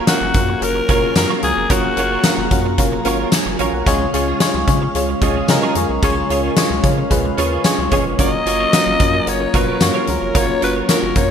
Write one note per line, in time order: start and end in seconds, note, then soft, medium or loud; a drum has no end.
0.00 3.82 F#3 medium
0.00 0.08 A#3 loud
0.00 0.08 C#4 loud
0.00 3.82 C#4 medium
0.00 0.09 F4 loud
0.00 0.09 F#4 loud
0.00 3.82 G#4 medium
0.00 0.09 A#4 loud
0.00 3.82 A#4 medium
0.00 8.14 F5 medium
0.07 0.28 A#3 loud
0.07 0.28 C#4 medium
0.07 0.28 F4 medium
0.07 0.64 F#4 loud
0.07 0.28 F#4 medium
0.07 0.28 A#4 loud
0.07 snare loud
0.07 closed hi-hat medium
0.07 tambourine medium
0.21 0.31 F#1 medium
0.21 muted clean electric guitar stroke soft
0.34 0.55 F#2 loud
0.34 0.55 A#3 medium
0.34 0.55 C#4 medium
0.34 0.55 F4 medium
0.34 0.55 F#4 medium
0.34 0.55 A#4 medium
0.34 kick loud
0.34 closed hi-hat medium
0.49 muted clean electric guitar stroke medium
0.61 0.82 F#1 loud
0.61 0.81 A#3 medium
0.61 0.81 C#4 medium
0.61 0.82 F4 medium
0.61 0.82 F#4 medium
0.61 1.16 A#4 loud
0.61 0.82 A#4 medium
0.61 muted clean electric guitar stroke soft
0.61 closed hi-hat medium
0.75 muted clean electric guitar stroke soft
0.89 1.09 F#1 medium
0.89 1.09 A#3 medium
0.89 1.02 C#4 medium
0.89 1.09 C#4 medium
0.89 1.02 F4 medium
0.89 1.09 F4 medium
0.89 1.09 F#4 medium
0.89 1.02 A#4 medium
0.89 1.09 A#4 medium
0.89 1.01 C#5 medium
0.89 kick medium
0.89 closed hi-hat medium
1.02 1.13 C#4 medium
1.02 1.13 F4 medium
1.02 1.13 A#4 medium
1.02 1.13 C#5 medium
1.15 1.26 F#2 loud
1.15 1.36 A#3 medium
1.15 1.36 C#4 medium
1.15 1.36 F4 medium
1.15 1.36 F#4 medium
1.15 1.29 A#4 loud
1.15 1.36 A#4 loud
1.15 snare loud
1.15 closed hi-hat medium
1.15 tambourine medium
1.29 1.42 C#4 medium
1.29 1.42 F4 medium
1.29 1.42 A#4 medium
1.29 1.43 C#5 medium
1.43 1.53 C#2 loud
1.43 1.62 A#3 medium
1.43 1.63 C#4 medium
1.43 1.63 F4 medium
1.43 1.63 F#4 medium
1.43 1.72 G#4 loud
1.43 1.63 A#4 medium
1.43 muted clean electric guitar stroke soft
1.43 closed hi-hat medium
1.57 1.67 F1 medium
1.57 muted clean electric guitar stroke soft
1.70 1.90 F#1 loud
1.70 1.89 A#3 medium
1.70 1.90 C#4 medium
1.70 1.83 C#4 medium
1.70 1.90 F4 medium
1.70 1.83 F4 medium
1.70 1.90 F#4 medium
1.70 2.78 F#4 loud
1.70 1.90 A#4 loud
1.70 1.83 A#4 loud
1.70 1.83 C#5 medium
1.70 kick loud
1.70 closed hi-hat medium
1.84 muted clean electric guitar stroke soft
1.96 2.17 F#1 loud
1.96 2.16 A#3 medium
1.96 2.16 C#4 medium
1.96 2.08 C#4 medium
1.96 2.17 F4 medium
1.96 2.08 F4 medium
1.96 2.17 F#4 medium
1.96 2.17 A#4 medium
1.96 2.08 A#4 medium
1.96 2.08 C#5 medium
1.96 closed hi-hat medium
2.11 2.22 C#4 medium
2.11 2.22 F4 medium
2.11 2.21 A#4 medium
2.11 2.21 C#5 medium
2.23 2.44 A#3 medium
2.23 2.44 C#4 medium
2.23 2.44 F4 medium
2.23 2.44 F#4 medium
2.23 2.44 A#4 loud
2.23 snare loud
2.23 closed hi-hat medium
2.23 tambourine medium
2.38 2.48 F#1 medium
2.38 muted clean electric guitar stroke soft
2.51 2.80 F#2 loud
2.51 2.71 A#3 medium
2.51 2.71 C#4 medium
2.51 2.71 F4 medium
2.51 2.71 F#4 medium
2.51 2.71 A#4 loud
2.51 kick loud
2.51 closed hi-hat medium
2.65 muted clean electric guitar stroke medium
2.78 2.98 F#1 loud
2.78 2.98 A#3 loud
2.78 2.98 C#4 medium
2.78 2.98 F4 medium
2.78 2.98 F#4 medium
2.78 2.98 A#4 loud
2.78 muted clean electric guitar stroke soft
2.78 kick medium
2.78 closed hi-hat medium
2.92 muted clean electric guitar stroke medium
3.05 3.25 G#1 medium
3.05 3.24 A#3 medium
3.05 3.25 C#4 medium
3.05 3.18 C#4 medium
3.05 3.25 F4 medium
3.05 3.19 F4 medium
3.05 3.25 F#4 medium
3.05 3.25 A#4 medium
3.05 3.18 A#4 medium
3.05 3.18 C#5 loud
3.05 closed hi-hat medium
3.19 3.30 C#4 medium
3.19 3.30 F4 medium
3.19 3.29 A#4 medium
3.19 3.29 C#5 medium
3.32 3.58 G#5 medium
3.32 snare loud
3.32 closed hi-hat loud
3.32 tambourine medium
3.46 3.56 F#1 medium
3.46 muted clean electric guitar stroke medium
3.59 3.69 A#1 medium
3.59 3.72 C#4 medium
3.59 3.73 F4 loud
3.59 3.72 A#4 medium
3.59 3.72 C#5 loud
3.59 3.73 C#5 medium
3.59 3.73 A#5 medium
3.59 closed hi-hat medium
3.73 3.83 B1 medium
3.73 3.99 A#4 medium
3.73 3.99 F#5 medium
3.73 muted clean electric guitar stroke medium
3.86 4.07 C#2 loud
3.86 4.64 C#3 medium
3.86 4.06 G#3 loud
3.86 8.15 G#3 medium
3.86 4.00 C#4 medium
3.86 4.06 C#4 loud
3.86 11.31 C#4 medium
3.86 4.00 F4 medium
3.86 4.06 F4 loud
3.86 4.00 G#4 loud
3.86 4.06 G#4 loud
3.86 4.06 C#5 loud
3.86 3.99 C#5 loud
3.86 kick loud
3.86 closed hi-hat loud
4.00 muted clean electric guitar stroke soft
4.14 4.34 C#2 loud
4.14 4.33 G#3 medium
4.14 4.24 C#4 medium
4.14 4.33 C#4 medium
4.14 4.33 F4 medium
4.14 4.24 F4 medium
4.14 4.33 G#4 medium
4.14 4.24 G#4 medium
4.14 4.34 C#5 loud
4.14 4.25 C#5 medium
4.14 closed hi-hat medium
4.27 4.38 C#4 medium
4.27 4.38 F4 medium
4.27 4.38 G#4 medium
4.27 4.37 C#5 medium
4.40 4.60 G#3 loud
4.40 4.60 C#4 loud
4.40 4.60 F4 loud
4.40 4.60 G#4 loud
4.40 4.60 C#5 loud
4.40 snare loud
4.40 closed hi-hat loud
4.40 tambourine medium
4.54 4.64 C#2 loud
4.54 muted clean electric guitar stroke medium
4.67 4.88 C#3 loud
4.67 4.87 G#3 medium
4.67 4.87 C#4 medium
4.67 4.87 F4 medium
4.67 4.88 G#4 medium
4.67 4.88 C#5 loud
4.67 kick loud
4.67 closed hi-hat medium
4.82 muted clean electric guitar stroke medium
4.95 5.15 C#2 loud
4.95 5.14 G#3 medium
4.95 5.14 C#4 medium
4.95 5.14 F4 medium
4.95 5.15 G#4 medium
4.95 5.15 C#5 loud
4.95 muted clean electric guitar stroke soft
4.95 closed hi-hat medium
5.09 muted clean electric guitar stroke soft
5.21 5.42 C#2 medium
5.21 5.41 G#3 medium
5.21 5.41 C#4 medium
5.21 5.35 C#4 medium
5.21 5.41 F4 medium
5.21 5.35 F4 medium
5.21 5.42 G#4 medium
5.21 5.35 G#4 medium
5.21 5.34 C#5 medium
5.21 5.42 D#5 medium
5.21 kick medium
5.21 closed hi-hat medium
5.35 5.46 C#4 medium
5.35 5.46 F4 medium
5.35 5.46 G#4 medium
5.35 5.46 C#5 medium
5.48 5.59 C#3 loud
5.48 5.68 G#3 loud
5.48 5.68 C#4 loud
5.48 5.69 F4 loud
5.48 5.69 G#4 loud
5.48 5.69 A#4 loud
5.48 muted clean electric guitar stroke soft
5.48 snare loud
5.48 closed hi-hat medium
5.48 tambourine medium
5.62 5.76 C#4 medium
5.62 5.76 F4 medium
5.62 5.76 G#4 medium
5.62 5.75 C#5 medium
5.75 5.86 F2 medium
5.75 5.95 G#3 medium
5.75 5.95 C#4 medium
5.75 5.96 F4 medium
5.75 5.96 G#4 medium
5.75 5.96 C#5 loud
5.75 muted clean electric guitar stroke soft
5.75 closed hi-hat medium
5.89 5.99 B1 loud
5.89 muted clean electric guitar stroke soft
6.03 6.23 C#2 loud
6.03 6.80 C#3 medium
6.03 6.22 G#3 loud
6.03 6.16 C#4 loud
6.03 6.22 C#4 loud
6.03 6.16 F4 medium
6.03 6.23 F4 loud
6.03 6.16 G#4 loud
6.03 6.23 G#4 loud
6.03 6.23 C#5 loud
6.03 6.15 C#5 loud
6.03 kick loud
6.03 closed hi-hat medium
6.16 muted clean electric guitar stroke soft
6.30 6.50 C#2 loud
6.30 6.49 G#3 medium
6.30 6.40 C#4 medium
6.30 6.50 C#4 medium
6.30 6.40 F4 medium
6.30 6.50 F4 medium
6.30 6.41 G#4 medium
6.30 6.50 G#4 medium
6.30 6.41 C#5 medium
6.30 6.50 C#5 loud
6.30 closed hi-hat medium
6.43 6.54 C#4 medium
6.43 6.54 F4 medium
6.43 6.54 G#4 medium
6.43 6.54 C#5 medium
6.56 6.76 G#3 loud
6.56 6.76 C#4 loud
6.56 6.76 F4 loud
6.56 6.77 G#4 loud
6.56 6.77 C#5 loud
6.56 muted clean electric guitar stroke soft
6.56 snare loud
6.56 closed hi-hat loud
6.56 tambourine medium
6.70 6.80 C#2 medium
6.70 muted clean electric guitar stroke medium
6.83 7.04 C#3 loud
6.83 7.03 G#3 medium
6.83 7.03 C#4 medium
6.83 7.03 F4 medium
6.83 7.03 G#4 medium
6.83 7.04 C#5 loud
6.83 kick loud
6.83 closed hi-hat medium
6.98 muted clean electric guitar stroke soft
7.10 7.31 C#2 loud
7.10 7.30 G#3 medium
7.10 7.30 C#4 medium
7.10 7.30 F4 medium
7.10 7.30 G#4 medium
7.10 7.31 B4 loud
7.10 muted clean electric guitar stroke soft
7.10 kick medium
7.10 closed hi-hat medium
7.25 muted clean electric guitar stroke soft
7.37 7.58 D#2 medium
7.37 7.57 G#3 medium
7.37 7.51 C#4 medium
7.37 7.57 C#4 medium
7.37 7.51 F4 medium
7.37 7.57 F4 medium
7.37 7.58 G#4 medium
7.37 7.51 G#4 medium
7.37 7.58 C#5 medium
7.37 7.51 C#5 medium
7.37 closed hi-hat medium
7.52 7.62 C#4 medium
7.52 7.62 F4 medium
7.52 7.62 G#4 medium
7.52 7.62 C#5 medium
7.64 7.84 G#3 loud
7.64 7.84 C#4 loud
7.64 7.84 F4 loud
7.64 7.84 G#4 loud
7.64 7.85 C#5 loud
7.64 snare loud
7.64 closed hi-hat loud
7.64 tambourine medium
7.78 7.88 C#2 medium
7.78 muted clean electric guitar stroke soft
7.91 8.02 F#1 medium
7.91 8.11 G#3 medium
7.91 8.05 C#4 medium
7.91 8.11 C#4 medium
7.91 8.11 F4 medium
7.91 8.05 F4 loud
7.91 8.05 G#4 loud
7.91 8.12 G#4 medium
7.91 8.12 C#5 loud
7.91 8.04 C#5 loud
7.91 kick loud
7.91 closed hi-hat medium
8.05 8.15 F1 medium
8.05 muted clean electric guitar stroke soft
8.19 8.39 F#1 loud
8.19 11.31 F#3 medium
8.19 8.38 A#3 medium
8.19 8.32 C#4 medium
8.19 8.38 C#4 medium
8.19 8.32 F4 medium
8.19 11.31 F4 medium
8.19 8.39 F4 medium
8.19 8.39 F#4 medium
8.19 11.31 G#4 medium
8.19 11.31 A#4 medium
8.19 8.32 A#4 loud
8.19 8.39 A#4 loud
8.19 8.31 C#5 loud
8.19 9.30 D#5 loud
8.19 kick loud
8.19 closed hi-hat medium
8.32 muted clean electric guitar stroke soft
8.46 8.66 F#1 loud
8.46 8.65 A#3 medium
8.46 8.56 C#4 medium
8.46 8.65 C#4 medium
8.46 8.56 F4 medium
8.46 8.66 F4 medium
8.46 8.66 F#4 medium
8.46 8.57 A#4 medium
8.46 8.66 A#4 medium
8.46 8.57 C#5 medium
8.46 closed hi-hat medium
8.59 8.70 C#4 medium
8.59 8.70 F4 medium
8.59 8.70 A#4 medium
8.59 8.69 C#5 medium
8.73 8.92 A#3 loud
8.73 8.93 C#4 medium
8.73 8.93 F4 medium
8.73 8.93 F#4 medium
8.73 8.93 A#4 loud
8.73 muted clean electric guitar stroke soft
8.73 snare loud
8.73 closed hi-hat loud
8.73 tambourine medium
8.86 8.96 F#1 loud
8.86 muted clean electric guitar stroke soft
9.00 9.20 F#2 loud
9.00 9.19 A#3 medium
9.00 9.20 C#4 medium
9.00 9.20 F4 medium
9.00 9.20 F#4 medium
9.00 9.20 A#4 medium
9.00 kick loud
9.00 closed hi-hat medium
9.13 muted clean electric guitar stroke soft
9.27 9.47 F#1 loud
9.27 9.46 A#3 medium
9.27 9.46 C#4 medium
9.27 9.47 F4 medium
9.27 9.47 F#4 medium
9.27 9.47 A#4 medium
9.27 9.58 C#5 loud
9.27 muted clean electric guitar stroke soft
9.27 closed hi-hat medium
9.40 muted clean electric guitar stroke soft
9.54 9.74 F#1 medium
9.54 9.74 A#3 medium
9.54 9.67 C#4 medium
9.54 9.74 C#4 medium
9.54 9.67 F4 medium
9.54 9.74 F4 medium
9.54 9.74 F#4 medium
9.54 9.66 A#4 medium
9.54 9.74 A#4 medium
9.54 9.84 B4 medium
9.54 9.66 C#5 medium
9.54 kick medium
9.54 closed hi-hat medium
9.67 9.78 C#4 medium
9.67 9.78 F4 medium
9.67 9.78 A#4 medium
9.67 9.77 C#5 medium
9.80 9.91 F#2 loud
9.80 10.01 A#3 loud
9.80 10.01 C#4 medium
9.80 10.01 F4 medium
9.80 10.01 F#4 loud
9.80 10.38 A#4 medium
9.80 10.01 C#5 loud
9.80 snare loud
9.80 closed hi-hat loud
9.80 tambourine medium
9.94 10.06 C#4 medium
9.94 10.07 F4 medium
9.94 10.07 A#4 medium
9.94 10.07 C#5 medium
10.07 10.18 C#2 medium
10.07 10.28 A#3 medium
10.07 10.28 C#4 medium
10.07 10.28 F4 medium
10.07 10.28 F#4 medium
10.07 10.28 A#4 medium
10.07 muted clean electric guitar stroke soft
10.07 closed hi-hat medium
10.21 10.32 F1 medium
10.21 muted clean electric guitar stroke soft
10.35 10.55 F#1 loud
10.35 10.55 A#3 medium
10.35 10.48 C#4 medium
10.35 10.55 C#4 medium
10.35 10.48 F4 medium
10.35 10.55 F4 medium
10.35 10.55 F#4 medium
10.35 10.47 A#4 medium
10.35 10.55 A#4 loud
10.35 10.47 C#5 medium
10.35 10.63 C#5 loud
10.35 kick loud
10.35 closed hi-hat loud
10.48 muted clean electric guitar stroke soft
10.61 10.82 F#1 loud
10.61 10.82 A#3 medium
10.61 10.72 C#4 medium
10.61 10.82 C#4 medium
10.61 10.72 F4 medium
10.61 10.82 F4 medium
10.61 10.82 F#4 medium
10.61 10.72 A#4 medium
10.61 10.82 A#4 medium
10.61 10.76 B4 medium
10.61 10.73 C#5 medium
10.61 closed hi-hat medium
10.75 10.86 C#4 medium
10.75 10.86 F4 medium
10.75 10.86 A#4 medium
10.75 10.86 C#5 medium
10.88 11.08 A#3 loud
10.88 11.08 C#4 medium
10.88 11.08 F4 medium
10.88 11.08 F#4 medium
10.88 11.19 A#4 medium
10.88 11.09 C#5 loud
10.88 muted clean electric guitar stroke soft
10.88 snare loud
10.88 closed hi-hat loud
10.88 tambourine medium
11.02 11.13 F#1 medium
11.02 muted clean electric guitar stroke medium
11.15 11.31 F#2 loud
11.15 11.31 A#3 medium
11.15 11.31 C#4 medium
11.15 11.31 F4 medium
11.15 11.31 F#4 medium
11.15 11.31 A#4 medium
11.15 11.31 C#5 medium
11.15 kick loud
11.15 closed hi-hat medium